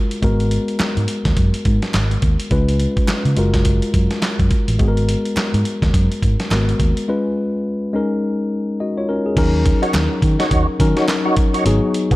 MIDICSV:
0, 0, Header, 1, 6, 480
1, 0, Start_track
1, 0, Tempo, 571429
1, 188, Time_signature, 4, 2, 24, 8
1, 10214, End_track
2, 0, Start_track
2, 0, Title_t, "Tonewheel organ"
2, 0, Program_c, 0, 16
2, 8250, Note_on_c, 0, 63, 79
2, 8253, Note_on_c, 0, 66, 69
2, 8256, Note_on_c, 0, 73, 87
2, 8339, Note_off_c, 0, 63, 0
2, 8341, Note_off_c, 0, 66, 0
2, 8342, Note_off_c, 0, 73, 0
2, 8729, Note_on_c, 0, 63, 83
2, 8731, Note_on_c, 0, 66, 77
2, 8734, Note_on_c, 0, 73, 95
2, 8814, Note_off_c, 0, 63, 0
2, 8817, Note_off_c, 0, 66, 0
2, 8819, Note_off_c, 0, 73, 0
2, 8824, Note_on_c, 0, 63, 74
2, 8827, Note_on_c, 0, 66, 68
2, 8829, Note_on_c, 0, 73, 77
2, 8958, Note_off_c, 0, 63, 0
2, 8960, Note_off_c, 0, 66, 0
2, 8961, Note_off_c, 0, 73, 0
2, 9209, Note_on_c, 0, 63, 81
2, 9211, Note_on_c, 0, 66, 70
2, 9214, Note_on_c, 0, 73, 82
2, 9298, Note_off_c, 0, 63, 0
2, 9299, Note_off_c, 0, 66, 0
2, 9301, Note_off_c, 0, 73, 0
2, 9449, Note_on_c, 0, 63, 77
2, 9452, Note_on_c, 0, 66, 68
2, 9454, Note_on_c, 0, 73, 83
2, 9539, Note_off_c, 0, 63, 0
2, 9540, Note_off_c, 0, 66, 0
2, 9541, Note_off_c, 0, 73, 0
2, 9689, Note_on_c, 0, 63, 73
2, 9693, Note_on_c, 0, 66, 69
2, 9695, Note_on_c, 0, 73, 81
2, 9779, Note_off_c, 0, 63, 0
2, 9780, Note_off_c, 0, 66, 0
2, 9781, Note_off_c, 0, 73, 0
2, 10171, Note_on_c, 0, 59, 75
2, 10174, Note_on_c, 0, 66, 70
2, 10177, Note_on_c, 0, 68, 84
2, 10214, Note_off_c, 0, 59, 0
2, 10214, Note_off_c, 0, 66, 0
2, 10214, Note_off_c, 0, 68, 0
2, 10214, End_track
3, 0, Start_track
3, 0, Title_t, "Tine electric piano"
3, 0, Program_c, 1, 4
3, 0, Control_c, 1, 64, 127
3, 0, Note_on_c, 1, 56, 68
3, 0, Note_on_c, 1, 65, 61
3, 0, Note_on_c, 1, 66, 60
3, 0, Note_on_c, 1, 70, 77
3, 162, Note_off_c, 1, 56, 0
3, 166, Note_off_c, 1, 65, 0
3, 169, Note_off_c, 1, 66, 0
3, 173, Note_off_c, 1, 70, 0
3, 185, Note_on_c, 1, 56, 67
3, 192, Note_on_c, 1, 59, 61
3, 198, Control_c, 1, 64, 0
3, 199, Note_on_c, 1, 66, 66
3, 205, Note_on_c, 1, 70, 79
3, 353, Control_c, 1, 64, 127
3, 2073, Note_off_c, 1, 56, 0
3, 2076, Note_off_c, 1, 59, 0
3, 2080, Note_off_c, 1, 66, 0
3, 2083, Note_off_c, 1, 70, 0
3, 2107, Note_on_c, 1, 56, 69
3, 2110, Note_on_c, 1, 61, 66
3, 2114, Note_on_c, 1, 65, 60
3, 2117, Note_on_c, 1, 71, 76
3, 2118, Control_c, 1, 64, 0
3, 2253, Control_c, 1, 64, 127
3, 2815, Note_off_c, 1, 56, 0
3, 2822, Note_off_c, 1, 65, 0
3, 2826, Note_on_c, 1, 56, 68
3, 2829, Note_off_c, 1, 61, 0
3, 2832, Note_on_c, 1, 65, 62
3, 2833, Note_off_c, 1, 71, 0
3, 2837, Control_c, 1, 64, 0
3, 2838, Note_on_c, 1, 66, 66
3, 2846, Note_on_c, 1, 70, 76
3, 2994, Control_c, 1, 64, 127
3, 4003, Note_off_c, 1, 56, 0
3, 4006, Note_off_c, 1, 65, 0
3, 4009, Note_off_c, 1, 66, 0
3, 4013, Note_off_c, 1, 70, 0
3, 4023, Note_on_c, 1, 56, 73
3, 4030, Note_on_c, 1, 59, 60
3, 4036, Note_on_c, 1, 66, 63
3, 4041, Control_c, 1, 64, 0
3, 4044, Note_on_c, 1, 68, 60
3, 4099, Note_on_c, 1, 70, 83
3, 4102, Note_off_c, 1, 68, 0
3, 4196, Control_c, 1, 64, 127
3, 5437, Note_off_c, 1, 56, 0
3, 5441, Note_off_c, 1, 59, 0
3, 5443, Note_off_c, 1, 66, 0
3, 5467, Note_on_c, 1, 56, 53
3, 5469, Note_off_c, 1, 70, 0
3, 5470, Note_on_c, 1, 59, 52
3, 5475, Note_on_c, 1, 66, 50
3, 5479, Note_on_c, 1, 70, 63
3, 5940, Note_off_c, 1, 56, 0
3, 5949, Note_off_c, 1, 59, 0
3, 5950, Note_on_c, 1, 56, 70
3, 5952, Note_off_c, 1, 66, 0
3, 5952, Note_on_c, 1, 61, 66
3, 5954, Note_off_c, 1, 70, 0
3, 5955, Note_on_c, 1, 65, 63
3, 5959, Note_on_c, 1, 71, 72
3, 5960, Control_c, 1, 64, 0
3, 6107, Control_c, 1, 64, 127
3, 6653, Note_off_c, 1, 56, 0
3, 6660, Note_off_c, 1, 61, 0
3, 6663, Note_on_c, 1, 56, 70
3, 6670, Note_on_c, 1, 61, 63
3, 6672, Note_off_c, 1, 65, 0
3, 6674, Note_off_c, 1, 71, 0
3, 6676, Note_on_c, 1, 63, 61
3, 6680, Control_c, 1, 64, 0
3, 6684, Note_on_c, 1, 70, 76
3, 6819, Control_c, 1, 64, 127
3, 7375, Note_off_c, 1, 61, 0
3, 7378, Note_off_c, 1, 63, 0
3, 7382, Note_off_c, 1, 70, 0
3, 7395, Note_on_c, 1, 75, 59
3, 7400, Note_on_c, 1, 66, 52
3, 7529, Note_off_c, 1, 75, 0
3, 7532, Note_off_c, 1, 66, 0
3, 7539, Note_on_c, 1, 73, 67
3, 7546, Note_on_c, 1, 65, 55
3, 7627, Note_off_c, 1, 73, 0
3, 7630, Note_off_c, 1, 65, 0
3, 7634, Note_on_c, 1, 70, 67
3, 7640, Note_on_c, 1, 61, 55
3, 7768, Note_off_c, 1, 70, 0
3, 7772, Note_off_c, 1, 61, 0
3, 7778, Note_on_c, 1, 68, 62
3, 7841, Note_off_c, 1, 56, 0
3, 7872, Note_on_c, 1, 54, 80
3, 7873, Note_on_c, 1, 61, 80
3, 7878, Note_on_c, 1, 63, 75
3, 7881, Control_c, 1, 64, 0
3, 7882, Note_on_c, 1, 70, 94
3, 8004, Note_off_c, 1, 68, 0
3, 8014, Control_c, 1, 64, 127
3, 8486, Note_off_c, 1, 54, 0
3, 8486, Note_off_c, 1, 61, 0
3, 8488, Note_off_c, 1, 63, 0
3, 8491, Note_off_c, 1, 70, 0
3, 9071, Note_on_c, 1, 54, 84
3, 9073, Note_on_c, 1, 61, 77
3, 9077, Note_on_c, 1, 63, 77
3, 9079, Note_on_c, 1, 70, 93
3, 9521, Note_off_c, 1, 54, 0
3, 9522, Note_off_c, 1, 61, 0
3, 9524, Note_off_c, 1, 63, 0
3, 9525, Note_off_c, 1, 70, 0
3, 9790, Note_on_c, 1, 54, 87
3, 9793, Note_on_c, 1, 59, 74
3, 9796, Note_on_c, 1, 63, 79
3, 9800, Control_c, 1, 64, 0
3, 9800, Note_on_c, 1, 68, 90
3, 9968, Control_c, 1, 64, 127
3, 10214, Note_off_c, 1, 54, 0
3, 10214, Note_off_c, 1, 59, 0
3, 10214, Note_off_c, 1, 63, 0
3, 10214, Note_off_c, 1, 68, 0
3, 10214, End_track
4, 0, Start_track
4, 0, Title_t, "Fingered electric bass"
4, 0, Program_c, 2, 33
4, 191, Note_on_c, 2, 32, 92
4, 478, Note_off_c, 2, 32, 0
4, 815, Note_on_c, 2, 44, 85
4, 886, Note_off_c, 2, 44, 0
4, 1053, Note_on_c, 2, 39, 84
4, 1124, Note_off_c, 2, 39, 0
4, 1151, Note_on_c, 2, 42, 92
4, 1258, Note_off_c, 2, 42, 0
4, 1392, Note_on_c, 2, 44, 87
4, 1499, Note_off_c, 2, 44, 0
4, 1631, Note_on_c, 2, 32, 88
4, 1810, Note_off_c, 2, 32, 0
4, 1870, Note_on_c, 2, 39, 86
4, 1978, Note_off_c, 2, 39, 0
4, 2110, Note_on_c, 2, 37, 96
4, 2397, Note_off_c, 2, 37, 0
4, 2731, Note_on_c, 2, 49, 81
4, 2803, Note_off_c, 2, 49, 0
4, 2828, Note_on_c, 2, 30, 90
4, 3188, Note_off_c, 2, 30, 0
4, 3309, Note_on_c, 2, 42, 87
4, 3417, Note_off_c, 2, 42, 0
4, 3692, Note_on_c, 2, 42, 87
4, 3764, Note_off_c, 2, 42, 0
4, 3932, Note_on_c, 2, 33, 84
4, 4004, Note_off_c, 2, 33, 0
4, 4028, Note_on_c, 2, 32, 98
4, 4316, Note_off_c, 2, 32, 0
4, 4653, Note_on_c, 2, 44, 89
4, 4724, Note_off_c, 2, 44, 0
4, 4891, Note_on_c, 2, 39, 81
4, 4963, Note_off_c, 2, 39, 0
4, 4988, Note_on_c, 2, 42, 104
4, 5096, Note_off_c, 2, 42, 0
4, 5231, Note_on_c, 2, 44, 92
4, 5338, Note_off_c, 2, 44, 0
4, 5468, Note_on_c, 2, 32, 95
4, 5648, Note_off_c, 2, 32, 0
4, 5710, Note_on_c, 2, 39, 79
4, 5817, Note_off_c, 2, 39, 0
4, 7869, Note_on_c, 2, 39, 108
4, 8157, Note_off_c, 2, 39, 0
4, 8349, Note_on_c, 2, 39, 94
4, 8457, Note_off_c, 2, 39, 0
4, 8588, Note_on_c, 2, 51, 108
4, 8696, Note_off_c, 2, 51, 0
4, 8831, Note_on_c, 2, 39, 105
4, 8938, Note_off_c, 2, 39, 0
4, 9072, Note_on_c, 2, 51, 93
4, 9179, Note_off_c, 2, 51, 0
4, 9790, Note_on_c, 2, 32, 98
4, 9898, Note_off_c, 2, 32, 0
4, 10173, Note_on_c, 2, 35, 92
4, 10214, Note_off_c, 2, 35, 0
4, 10214, End_track
5, 0, Start_track
5, 0, Title_t, "Muted fingered electric bass strokes"
5, 670, Note_on_c, 9, 29, 46
5, 754, Note_off_c, 9, 29, 0
5, 2587, Note_on_c, 9, 29, 48
5, 2671, Note_off_c, 9, 29, 0
5, 4507, Note_on_c, 9, 29, 46
5, 4591, Note_off_c, 9, 29, 0
5, 10214, End_track
6, 0, Start_track
6, 0, Title_t, "Drums"
6, 94, Note_on_c, 9, 42, 61
6, 178, Note_off_c, 9, 42, 0
6, 189, Note_on_c, 9, 36, 98
6, 189, Note_on_c, 9, 42, 72
6, 273, Note_off_c, 9, 36, 0
6, 273, Note_off_c, 9, 42, 0
6, 336, Note_on_c, 9, 42, 51
6, 420, Note_off_c, 9, 42, 0
6, 430, Note_on_c, 9, 42, 73
6, 514, Note_off_c, 9, 42, 0
6, 573, Note_on_c, 9, 42, 46
6, 657, Note_off_c, 9, 42, 0
6, 667, Note_on_c, 9, 42, 63
6, 668, Note_on_c, 9, 38, 93
6, 668, Note_on_c, 9, 39, 78
6, 678, Note_off_c, 9, 39, 0
6, 678, Note_on_c, 9, 39, 77
6, 751, Note_off_c, 9, 42, 0
6, 752, Note_off_c, 9, 38, 0
6, 762, Note_off_c, 9, 39, 0
6, 814, Note_on_c, 9, 42, 47
6, 898, Note_off_c, 9, 42, 0
6, 906, Note_on_c, 9, 42, 75
6, 990, Note_off_c, 9, 42, 0
6, 1051, Note_on_c, 9, 38, 66
6, 1052, Note_on_c, 9, 36, 93
6, 1052, Note_on_c, 9, 42, 67
6, 1135, Note_off_c, 9, 38, 0
6, 1136, Note_off_c, 9, 36, 0
6, 1136, Note_off_c, 9, 42, 0
6, 1148, Note_on_c, 9, 42, 87
6, 1149, Note_on_c, 9, 36, 85
6, 1232, Note_off_c, 9, 42, 0
6, 1233, Note_off_c, 9, 36, 0
6, 1293, Note_on_c, 9, 42, 55
6, 1377, Note_off_c, 9, 42, 0
6, 1387, Note_on_c, 9, 42, 71
6, 1390, Note_on_c, 9, 36, 98
6, 1471, Note_off_c, 9, 42, 0
6, 1474, Note_off_c, 9, 36, 0
6, 1532, Note_on_c, 9, 42, 50
6, 1534, Note_on_c, 9, 38, 56
6, 1616, Note_off_c, 9, 42, 0
6, 1618, Note_off_c, 9, 38, 0
6, 1628, Note_on_c, 9, 42, 72
6, 1629, Note_on_c, 9, 39, 73
6, 1630, Note_on_c, 9, 38, 106
6, 1639, Note_off_c, 9, 39, 0
6, 1639, Note_on_c, 9, 39, 88
6, 1712, Note_off_c, 9, 42, 0
6, 1714, Note_off_c, 9, 38, 0
6, 1723, Note_off_c, 9, 39, 0
6, 1775, Note_on_c, 9, 42, 43
6, 1859, Note_off_c, 9, 42, 0
6, 1866, Note_on_c, 9, 42, 76
6, 1868, Note_on_c, 9, 36, 92
6, 1950, Note_off_c, 9, 42, 0
6, 1952, Note_off_c, 9, 36, 0
6, 2012, Note_on_c, 9, 42, 63
6, 2096, Note_off_c, 9, 42, 0
6, 2107, Note_on_c, 9, 42, 68
6, 2108, Note_on_c, 9, 36, 106
6, 2191, Note_off_c, 9, 42, 0
6, 2192, Note_off_c, 9, 36, 0
6, 2255, Note_on_c, 9, 42, 54
6, 2339, Note_off_c, 9, 42, 0
6, 2348, Note_on_c, 9, 42, 71
6, 2432, Note_off_c, 9, 42, 0
6, 2493, Note_on_c, 9, 36, 87
6, 2493, Note_on_c, 9, 42, 48
6, 2577, Note_off_c, 9, 36, 0
6, 2577, Note_off_c, 9, 42, 0
6, 2587, Note_on_c, 9, 42, 67
6, 2588, Note_on_c, 9, 39, 84
6, 2589, Note_on_c, 9, 38, 93
6, 2598, Note_off_c, 9, 39, 0
6, 2598, Note_on_c, 9, 39, 76
6, 2671, Note_off_c, 9, 42, 0
6, 2673, Note_off_c, 9, 38, 0
6, 2682, Note_off_c, 9, 39, 0
6, 2733, Note_on_c, 9, 42, 47
6, 2817, Note_off_c, 9, 42, 0
6, 2827, Note_on_c, 9, 42, 70
6, 2911, Note_off_c, 9, 42, 0
6, 2971, Note_on_c, 9, 36, 91
6, 2971, Note_on_c, 9, 38, 68
6, 2972, Note_on_c, 9, 42, 62
6, 3055, Note_off_c, 9, 36, 0
6, 3055, Note_off_c, 9, 38, 0
6, 3056, Note_off_c, 9, 42, 0
6, 3065, Note_on_c, 9, 42, 89
6, 3067, Note_on_c, 9, 36, 86
6, 3149, Note_off_c, 9, 42, 0
6, 3151, Note_off_c, 9, 36, 0
6, 3211, Note_on_c, 9, 42, 59
6, 3295, Note_off_c, 9, 42, 0
6, 3308, Note_on_c, 9, 36, 95
6, 3308, Note_on_c, 9, 42, 79
6, 3392, Note_off_c, 9, 36, 0
6, 3392, Note_off_c, 9, 42, 0
6, 3449, Note_on_c, 9, 42, 55
6, 3451, Note_on_c, 9, 38, 52
6, 3533, Note_off_c, 9, 42, 0
6, 3535, Note_off_c, 9, 38, 0
6, 3546, Note_on_c, 9, 42, 64
6, 3548, Note_on_c, 9, 38, 102
6, 3548, Note_on_c, 9, 39, 75
6, 3557, Note_off_c, 9, 39, 0
6, 3557, Note_on_c, 9, 39, 84
6, 3630, Note_off_c, 9, 42, 0
6, 3632, Note_off_c, 9, 38, 0
6, 3641, Note_off_c, 9, 39, 0
6, 3691, Note_on_c, 9, 36, 89
6, 3693, Note_on_c, 9, 42, 46
6, 3775, Note_off_c, 9, 36, 0
6, 3777, Note_off_c, 9, 42, 0
6, 3785, Note_on_c, 9, 42, 73
6, 3787, Note_on_c, 9, 36, 97
6, 3869, Note_off_c, 9, 42, 0
6, 3871, Note_off_c, 9, 36, 0
6, 3932, Note_on_c, 9, 42, 62
6, 4016, Note_off_c, 9, 42, 0
6, 4027, Note_on_c, 9, 36, 106
6, 4027, Note_on_c, 9, 42, 69
6, 4111, Note_off_c, 9, 36, 0
6, 4111, Note_off_c, 9, 42, 0
6, 4176, Note_on_c, 9, 42, 52
6, 4260, Note_off_c, 9, 42, 0
6, 4272, Note_on_c, 9, 42, 72
6, 4356, Note_off_c, 9, 42, 0
6, 4414, Note_on_c, 9, 42, 49
6, 4498, Note_off_c, 9, 42, 0
6, 4506, Note_on_c, 9, 39, 78
6, 4510, Note_on_c, 9, 42, 65
6, 4511, Note_on_c, 9, 38, 95
6, 4521, Note_off_c, 9, 39, 0
6, 4521, Note_on_c, 9, 39, 80
6, 4594, Note_off_c, 9, 42, 0
6, 4595, Note_off_c, 9, 38, 0
6, 4605, Note_off_c, 9, 39, 0
6, 4655, Note_on_c, 9, 42, 49
6, 4739, Note_off_c, 9, 42, 0
6, 4749, Note_on_c, 9, 42, 73
6, 4833, Note_off_c, 9, 42, 0
6, 4891, Note_on_c, 9, 36, 93
6, 4895, Note_on_c, 9, 38, 62
6, 4895, Note_on_c, 9, 42, 61
6, 4975, Note_off_c, 9, 36, 0
6, 4979, Note_off_c, 9, 38, 0
6, 4979, Note_off_c, 9, 42, 0
6, 4988, Note_on_c, 9, 36, 92
6, 4990, Note_on_c, 9, 42, 86
6, 5072, Note_off_c, 9, 36, 0
6, 5074, Note_off_c, 9, 42, 0
6, 5138, Note_on_c, 9, 42, 54
6, 5222, Note_off_c, 9, 42, 0
6, 5229, Note_on_c, 9, 36, 89
6, 5232, Note_on_c, 9, 42, 78
6, 5313, Note_off_c, 9, 36, 0
6, 5316, Note_off_c, 9, 42, 0
6, 5373, Note_on_c, 9, 42, 46
6, 5375, Note_on_c, 9, 38, 59
6, 5457, Note_off_c, 9, 42, 0
6, 5459, Note_off_c, 9, 38, 0
6, 5468, Note_on_c, 9, 39, 77
6, 5470, Note_on_c, 9, 42, 63
6, 5471, Note_on_c, 9, 38, 109
6, 5481, Note_off_c, 9, 39, 0
6, 5481, Note_on_c, 9, 39, 85
6, 5554, Note_off_c, 9, 42, 0
6, 5555, Note_off_c, 9, 38, 0
6, 5565, Note_off_c, 9, 39, 0
6, 5617, Note_on_c, 9, 42, 45
6, 5701, Note_off_c, 9, 42, 0
6, 5708, Note_on_c, 9, 36, 88
6, 5709, Note_on_c, 9, 42, 72
6, 5792, Note_off_c, 9, 36, 0
6, 5793, Note_off_c, 9, 42, 0
6, 5855, Note_on_c, 9, 42, 61
6, 5939, Note_off_c, 9, 42, 0
6, 7868, Note_on_c, 9, 36, 120
6, 7869, Note_on_c, 9, 42, 76
6, 7869, Note_on_c, 9, 49, 94
6, 7952, Note_off_c, 9, 36, 0
6, 7953, Note_off_c, 9, 42, 0
6, 7953, Note_off_c, 9, 49, 0
6, 8110, Note_on_c, 9, 36, 97
6, 8110, Note_on_c, 9, 42, 75
6, 8194, Note_off_c, 9, 36, 0
6, 8194, Note_off_c, 9, 42, 0
6, 8255, Note_on_c, 9, 42, 51
6, 8339, Note_off_c, 9, 42, 0
6, 8349, Note_on_c, 9, 39, 90
6, 8349, Note_on_c, 9, 42, 67
6, 8350, Note_on_c, 9, 38, 108
6, 8360, Note_off_c, 9, 39, 0
6, 8360, Note_on_c, 9, 39, 78
6, 8433, Note_off_c, 9, 42, 0
6, 8434, Note_off_c, 9, 38, 0
6, 8444, Note_off_c, 9, 39, 0
6, 8587, Note_on_c, 9, 36, 88
6, 8589, Note_on_c, 9, 42, 80
6, 8671, Note_off_c, 9, 36, 0
6, 8673, Note_off_c, 9, 42, 0
6, 8734, Note_on_c, 9, 38, 73
6, 8735, Note_on_c, 9, 42, 64
6, 8818, Note_off_c, 9, 38, 0
6, 8819, Note_off_c, 9, 42, 0
6, 8829, Note_on_c, 9, 36, 94
6, 8829, Note_on_c, 9, 42, 94
6, 8913, Note_off_c, 9, 36, 0
6, 8913, Note_off_c, 9, 42, 0
6, 9070, Note_on_c, 9, 36, 96
6, 9071, Note_on_c, 9, 42, 82
6, 9154, Note_off_c, 9, 36, 0
6, 9155, Note_off_c, 9, 42, 0
6, 9212, Note_on_c, 9, 42, 51
6, 9214, Note_on_c, 9, 38, 63
6, 9296, Note_off_c, 9, 42, 0
6, 9298, Note_off_c, 9, 38, 0
6, 9308, Note_on_c, 9, 42, 72
6, 9309, Note_on_c, 9, 38, 112
6, 9309, Note_on_c, 9, 39, 76
6, 9319, Note_off_c, 9, 39, 0
6, 9319, Note_on_c, 9, 39, 94
6, 9392, Note_off_c, 9, 42, 0
6, 9393, Note_off_c, 9, 38, 0
6, 9403, Note_off_c, 9, 39, 0
6, 9547, Note_on_c, 9, 42, 82
6, 9549, Note_on_c, 9, 36, 105
6, 9631, Note_off_c, 9, 42, 0
6, 9633, Note_off_c, 9, 36, 0
6, 9696, Note_on_c, 9, 42, 68
6, 9780, Note_off_c, 9, 42, 0
6, 9792, Note_on_c, 9, 42, 69
6, 9876, Note_off_c, 9, 42, 0
6, 10033, Note_on_c, 9, 42, 73
6, 10117, Note_off_c, 9, 42, 0
6, 10174, Note_on_c, 9, 36, 89
6, 10174, Note_on_c, 9, 42, 56
6, 10214, Note_off_c, 9, 36, 0
6, 10214, Note_off_c, 9, 42, 0
6, 10214, End_track
0, 0, End_of_file